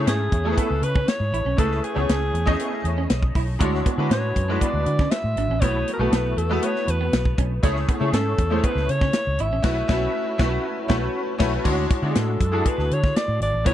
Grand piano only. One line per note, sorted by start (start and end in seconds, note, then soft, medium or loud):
0.00 0.45 A3 medium
0.00 0.45 C#4 medium
0.00 0.45 E4 medium
0.00 0.46 G#4 medium
0.00 1.96 C#5 loud
0.45 1.12 A3 medium
0.45 1.12 C#4 medium
0.45 1.12 E4 medium
0.45 1.12 G#4 medium
0.45 0.52 A4 medium
0.52 1.15 B4 medium
1.57 1.83 A3 medium
1.57 1.83 C#4 medium
1.57 1.83 E4 medium
1.57 1.83 G#4 medium
1.57 1.84 B4 medium
1.94 2.29 A3 medium
1.94 2.29 C#4 medium
1.94 2.29 E4 medium
1.94 2.29 G#4 medium
1.94 2.30 C#5 medium
2.46 3.13 A3 medium
2.46 3.13 C#4 medium
2.46 3.13 E4 medium
2.46 3.13 G#4 medium
2.46 3.14 D#5 loud
3.59 3.85 G#3 medium
3.59 3.85 D4 medium
3.59 3.85 E4 medium
3.59 3.85 F#4 medium
3.59 3.85 C#5 loud
3.98 4.31 G#3 medium
3.98 4.31 D4 medium
3.98 4.32 E4 medium
3.98 4.32 F#4 medium
3.98 4.32 B4 medium
4.48 5.15 G#3 medium
4.48 5.15 D4 medium
4.48 5.15 E4 medium
4.48 5.16 F#4 medium
4.48 5.16 B4 medium
5.61 5.86 A3 medium
5.61 5.87 B3 medium
5.61 5.87 E4 medium
5.61 5.87 F#4 medium
5.61 5.87 B4 medium
5.99 6.32 A3 medium
5.99 6.33 B3 medium
5.99 6.33 E4 medium
5.99 6.33 F#4 medium
5.99 6.33 A4 medium
6.50 7.16 A3 medium
6.50 7.16 B3 medium
6.50 7.16 E4 medium
6.50 7.16 F#4 medium
6.50 7.17 B4 medium
7.63 7.88 A3 medium
7.63 7.88 C#4 medium
7.63 7.88 E4 medium
7.63 7.88 G#4 medium
7.63 7.88 C#5 loud
8.00 8.33 A3 medium
8.00 8.34 C#4 medium
8.00 8.34 E4 medium
8.00 8.34 G#4 medium
8.00 8.34 C#5 medium
8.50 9.17 A3 medium
8.50 9.17 C#4 medium
8.50 9.17 E4 medium
8.50 9.18 G#4 medium
8.50 8.57 C5 medium
8.58 9.21 C#5 medium
9.62 9.80 A3 medium
9.62 9.81 C#4 medium
9.62 9.81 E4 loud
9.62 9.81 F#4 loud
9.62 9.81 B4 loud
9.88 10.06 A3 loud
9.88 10.06 C#4 medium
9.88 10.06 E4 loud
9.88 10.06 F#4 loud
9.88 10.06 B4 loud
10.38 10.56 A3 medium
10.38 10.56 C#4 medium
10.38 10.56 E4 medium
10.38 10.56 F#4 medium
10.38 10.56 B4 medium
10.88 11.06 A3 loud
10.88 11.06 C#4 medium
10.88 11.06 E4 medium
10.88 11.06 F#4 medium
10.88 11.07 B4 loud
11.38 11.56 A3 medium
11.38 11.56 C#4 medium
11.38 11.57 E4 medium
11.38 11.57 F#4 medium
11.38 11.57 B4 medium
11.64 11.89 G#3 medium
11.64 11.89 D4 medium
11.64 11.90 E4 medium
11.64 11.90 F#4 medium
11.64 11.90 C#5 medium
12.02 12.36 G#3 medium
12.02 12.36 D4 medium
12.02 12.36 E4 medium
12.02 12.36 F#4 medium
12.02 12.36 C#5 medium
12.52 13.19 D4 medium
12.52 13.18 E4 medium
12.52 13.19 F#4 medium
12.52 13.18 G#4 medium
12.52 13.19 A4 medium
13.64 13.74 A3 medium
13.64 13.74 B3 medium
13.64 13.74 E4 medium
13.64 13.74 F#4 medium
13.64 13.74 B4 medium